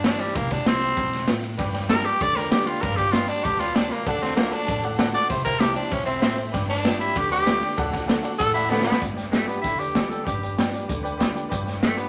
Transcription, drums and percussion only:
0.04 snare, ride
0.21 snare, ride
0.35 kick, ride
0.51 kick, snare, ride
0.66 snare, ride
0.82 ride
0.97 kick, ride
1.13 snare, ride
1.28 snare, ride
1.44 ride
1.59 kick, snare, ride
1.74 snare, ride
1.89 snare, ride
2.05 ride
2.21 kick, ride
2.36 snare, ride
2.52 snare, ride
2.67 snare, ride
2.83 kick, ride
2.98 kick, snare, ride
3.13 snare, ride
3.29 ride
3.45 kick, ride
3.60 snare, ride
3.76 snare, ride
3.92 snare, ride
4.07 kick, ride
4.22 snare, ride
4.37 snare, ride
4.53 ride
4.68 kick, ride
4.83 ride
4.99 snare, ride
5.15 snare, ride
5.30 kick, snare, ride
5.45 kick, ride
5.60 snare, ride
5.76 ride
5.91 kick, ride
6.07 ride
6.22 snare, ride
6.38 ride
6.54 kick, snare, ride
6.70 snare, ride
6.85 snare, ride
7.01 ride
7.16 kick, ride
7.32 snare, ride
7.47 snare, ride
7.63 snare, ride
7.78 kick, snare, ride
7.94 kick, snare, ride
8.09 snare, ride
8.25 ride
8.40 kick, ride
8.57 ride
8.72 snare
8.81 snare
8.92 snare
9.02 kick, closed hi-hat
9.18 snare, closed hi-hat
9.33 snare, closed hi-hat
9.49 closed hi-hat
9.64 kick, closed hi-hat
9.80 closed hi-hat
9.95 kick, snare, closed hi-hat
10.11 closed hi-hat
10.27 kick, closed hi-hat
10.43 closed hi-hat
10.59 snare, closed hi-hat
10.74 closed hi-hat
10.89 kick, closed hi-hat
11.05 closed hi-hat
11.21 kick, snare, closed hi-hat
11.36 closed hi-hat
11.52 kick, closed hi-hat
11.68 snare, closed hi-hat
11.83 snare, closed hi-hat
11.98 closed hi-hat

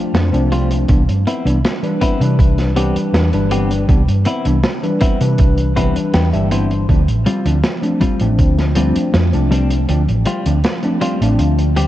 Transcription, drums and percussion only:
0.15 snare, closed hi-hat
0.34 closed hi-hat
0.52 closed hi-hat
0.71 closed hi-hat
0.88 kick, closed hi-hat
1.09 closed hi-hat
1.27 closed hi-hat
1.47 closed hi-hat
1.65 snare, closed hi-hat
1.84 closed hi-hat
2.01 kick, closed hi-hat
2.21 closed hi-hat
2.39 kick, closed hi-hat
2.58 snare, closed hi-hat
2.77 closed hi-hat
2.96 closed hi-hat
3.14 snare, closed hi-hat
3.33 closed hi-hat
3.51 closed hi-hat
3.71 closed hi-hat
3.89 kick, closed hi-hat
4.09 closed hi-hat
4.25 closed hi-hat
4.45 closed hi-hat
4.63 snare, closed hi-hat
4.84 closed hi-hat
5.01 kick, closed hi-hat
5.21 closed hi-hat
5.38 kick, closed hi-hat
5.58 closed hi-hat
5.77 kick, closed hi-hat
5.96 closed hi-hat
6.14 snare, closed hi-hat
6.33 closed hi-hat
6.51 closed hi-hat
6.71 closed hi-hat
6.89 kick, closed hi-hat
7.08 closed hi-hat
7.26 closed hi-hat
7.46 closed hi-hat
7.64 snare, closed hi-hat
7.83 closed hi-hat
8.01 kick, closed hi-hat
8.20 closed hi-hat
8.39 kick, closed hi-hat
8.59 snare, closed hi-hat
8.75 closed hi-hat
8.96 closed hi-hat
9.14 snare, closed hi-hat
9.33 closed hi-hat
9.52 closed hi-hat
9.70 closed hi-hat
9.89 closed hi-hat
10.08 closed hi-hat
10.25 closed hi-hat
10.46 closed hi-hat
10.64 snare, closed hi-hat
10.83 closed hi-hat
11.01 closed hi-hat
11.22 closed hi-hat
11.39 closed hi-hat
11.59 closed hi-hat
11.76 closed hi-hat

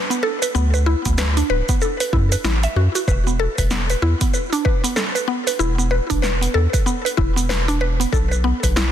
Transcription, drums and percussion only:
0.11 open hi-hat, shaker
0.43 open hi-hat, shaker
0.55 shaker
0.74 shaker
1.05 kick, open hi-hat, shaker
1.18 snare, shaker
1.37 open hi-hat, shaker
1.69 kick, open hi-hat, shaker
1.81 shaker
2.00 open hi-hat, shaker
2.13 kick
2.32 open hi-hat, shaker
2.44 snare, shaker
2.63 open hi-hat, shaker
2.95 open hi-hat, shaker
3.08 kick, shaker
3.27 shaker
3.58 kick, open hi-hat, shaker
3.71 snare, shaker
3.90 open hi-hat, shaker
4.21 kick, open hi-hat, shaker
4.34 shaker
4.53 open hi-hat, shaker
4.66 kick
4.84 open hi-hat, shaker
4.97 snare, shaker
5.16 open hi-hat, shaker
5.47 open hi-hat, shaker
5.60 shaker
5.79 shaker
6.10 kick, open hi-hat, shaker
6.23 snare, shaker
6.43 open hi-hat, shaker
6.74 kick, open hi-hat, shaker
6.87 shaker
7.06 open hi-hat, shaker
7.18 kick
7.38 open hi-hat, shaker
7.50 snare, shaker
7.69 open hi-hat, shaker
8.01 open hi-hat, shaker
8.13 kick, shaker
8.32 shaker
8.63 kick, open hi-hat, shaker
8.77 snare, shaker

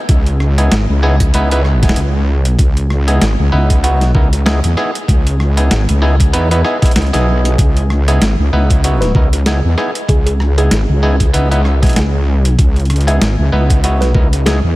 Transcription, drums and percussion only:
0.09 kick, closed hi-hat
0.26 closed hi-hat
0.40 cross-stick
0.58 closed hi-hat
0.72 snare, closed hi-hat
1.20 kick, closed hi-hat
1.34 closed hi-hat
1.51 closed hi-hat
1.65 cross-stick
1.83 kick, snare, closed hi-hat
1.89 snare
1.96 closed hi-hat
2.45 closed hi-hat
2.59 kick, closed hi-hat
2.77 closed hi-hat
2.90 cross-stick
3.08 closed hi-hat
3.22 snare, closed hi-hat
3.70 kick, closed hi-hat
3.84 closed hi-hat
4.01 snare, closed hi-hat
4.15 kick
4.33 closed hi-hat
4.46 snare
4.64 closed hi-hat
4.77 cross-stick
4.95 closed hi-hat
5.08 kick, closed hi-hat
5.27 closed hi-hat
5.40 cross-stick
5.57 closed hi-hat
5.71 snare, closed hi-hat
5.89 closed hi-hat
6.20 kick, closed hi-hat
6.34 closed hi-hat
6.51 closed hi-hat
6.65 cross-stick
6.82 kick, snare, closed hi-hat
6.85 closed hi-hat
6.91 closed hi-hat
6.96 snare, closed hi-hat
7.02 closed hi-hat
7.07 closed hi-hat
7.14 closed hi-hat
7.45 closed hi-hat
7.58 kick, closed hi-hat
7.77 closed hi-hat
7.90 cross-stick
8.08 closed hi-hat
8.22 snare, closed hi-hat
8.70 kick, closed hi-hat
8.84 closed hi-hat
9.02 snare, closed hi-hat
9.15 kick
9.33 closed hi-hat
9.46 snare, closed hi-hat
9.78 cross-stick
9.95 closed hi-hat
10.09 kick, closed hi-hat
10.27 closed hi-hat
10.40 cross-stick
10.58 closed hi-hat
10.71 snare, closed hi-hat
11.20 kick, closed hi-hat
11.34 closed hi-hat
11.52 closed hi-hat
11.65 cross-stick
11.83 kick, snare, closed hi-hat
11.86 closed hi-hat
11.89 closed hi-hat
11.93 snare, closed hi-hat
11.96 closed hi-hat
12.45 closed hi-hat
12.59 kick, closed hi-hat
12.76 closed hi-hat
12.80 closed hi-hat
12.85 closed hi-hat
12.90 cross-stick, closed hi-hat
12.96 closed hi-hat
13.01 closed hi-hat
13.08 closed hi-hat
13.22 snare, closed hi-hat
13.70 kick, closed hi-hat
13.84 closed hi-hat
14.02 snare, closed hi-hat
14.15 kick
14.33 closed hi-hat
14.46 snare, closed hi-hat

